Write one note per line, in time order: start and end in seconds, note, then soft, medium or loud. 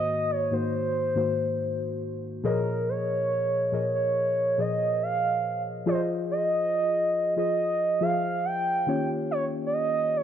0.00 0.28 G#2 medium
0.00 0.28 D#3 medium
0.00 0.29 A#3 medium
0.00 0.29 F#4 medium
0.00 0.32 C5 loud
0.00 0.33 D#5 loud
0.31 0.54 C#5 loud
0.51 1.06 G#2 medium
0.51 1.06 D#3 medium
0.51 1.06 A#3 medium
0.51 1.07 F#4 medium
0.51 2.02 C5 medium
0.51 1.07 C5 medium
1.15 2.24 G#2 medium
1.15 2.24 D#3 medium
1.15 2.25 A#3 medium
1.15 2.25 F#4 medium
1.15 2.25 C5 medium
2.44 3.53 A#2 medium
2.44 3.53 F3 medium
2.44 3.53 G#4 medium
2.44 3.53 A#4 medium
2.44 2.90 A#4 medium
2.44 3.54 C#5 medium
2.44 3.54 D#5 loud
2.89 3.95 C#5 loud
3.72 4.45 A#2 medium
3.72 4.45 F3 medium
3.72 4.45 G#4 medium
3.72 4.46 A#4 medium
3.72 4.46 C#5 medium
3.72 4.46 D#5 medium
3.95 4.62 C#5 medium
4.58 5.67 A#2 medium
4.58 5.67 F3 medium
4.58 5.67 G#4 medium
4.58 5.68 C5 medium
4.58 5.68 C#5 medium
4.58 5.02 D#5 medium
4.58 5.68 D#5 medium
5.03 5.62 F5 loud
5.86 7.13 F3 medium
5.86 7.14 F4 medium
5.86 7.14 G#4 medium
5.86 7.14 C5 medium
5.86 6.02 C5 medium
5.86 5.94 D5 medium
5.95 7.18 D#5 loud
6.31 7.34 D#5 loud
7.36 7.91 F3 medium
7.36 7.92 F4 medium
7.36 7.92 G#4 medium
7.36 7.92 C5 medium
7.36 8.04 D#5 loud
7.36 7.92 D#5 medium
8.01 8.87 F3 medium
8.01 8.87 F4 medium
8.01 8.87 G#4 medium
8.01 8.88 C5 medium
8.01 8.09 E5 medium
8.01 8.47 F5 medium
8.10 8.91 F5 medium
8.45 9.09 G5 loud
8.87 10.23 D#3 medium
8.87 10.23 A#3 medium
8.87 10.23 C#4 medium
8.87 10.23 F4 medium
8.87 10.23 G4 medium
8.87 10.23 C#5 medium
9.31 9.45 C#5 medium
9.67 9.74 D5 medium
9.73 10.18 D#5 loud
10.16 10.23 C#5 loud